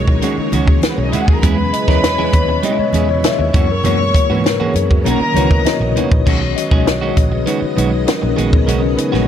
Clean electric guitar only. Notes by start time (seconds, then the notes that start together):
0.08 muted clean electric guitar stroke
0.22 D#3 G#3 C#4 F#4
0.38 muted clean electric guitar stroke
0.52 D#3 G#3 C#4 F#4
0.68 muted clean electric guitar stroke
0.98 muted clean electric guitar stroke
1.13 D#3 G#3 C#4 F#4
1.28 muted clean electric guitar stroke
1.43 G#3 C#4 E4 G#4
1.58 muted clean electric guitar stroke
1.73 muted clean electric guitar stroke
1.88 G#3 C#4 E4 A#4
2.03 muted clean electric guitar stroke
2.18 G#3 C#4 E4 G#4
2.34 muted clean electric guitar stroke
2.49 muted clean electric guitar stroke
2.63 G#3 C#4 E4 G#4
2.79 muted clean electric guitar stroke
2.93 G#3 C#4 E4 G#4
3.09 muted clean electric guitar stroke
3.24 muted clean electric guitar stroke
3.39 muted clean electric guitar stroke
3.54 E3 A#3 C#4 F#4
3.70 muted clean electric guitar stroke
3.84 E3 A#3 C#4 F#4
4.00 muted clean electric guitar stroke
4.15 muted clean electric guitar stroke
4.30 E3 A#3 C#4 F#4
4.45 muted clean electric guitar stroke
4.60 E3 A#3 C#4 F#4
4.75 muted clean electric guitar stroke
4.91 muted clean electric guitar stroke
5.06 D#3 A#3 C#4 F#4
5.21 muted clean electric guitar stroke
5.36 D#3 A#3 C#4 F#4
5.51 muted clean electric guitar stroke
5.81 muted clean electric guitar stroke
5.96 D#3 A#3 C#4 F#4
6.12 muted clean electric guitar stroke
6.26 D#3 G#3 C#4 F#4
6.42 muted clean electric guitar stroke
6.57 muted clean electric guitar stroke
6.72 D#3 G#3 C#4 G#4
6.87 muted clean electric guitar stroke
7.01 D#3 G#3 C#4 F#4
7.17 muted clean electric guitar stroke
7.32 muted clean electric guitar stroke
7.46 D#3 G#3 C#4 F#4
7.61 muted clean electric guitar stroke
7.77 D#3 G#3 C#4 F#4
7.92 muted clean electric guitar stroke
8.07 muted clean electric guitar stroke
8.22 muted clean electric guitar stroke
8.37 D#3 G#3 C#4 F#4
8.52 muted clean electric guitar stroke
8.67 D#3 G#3 C#4 F#4
8.83 muted clean electric guitar stroke
8.97 muted clean electric guitar stroke
9.12 D#3 G#3 C#4 F#4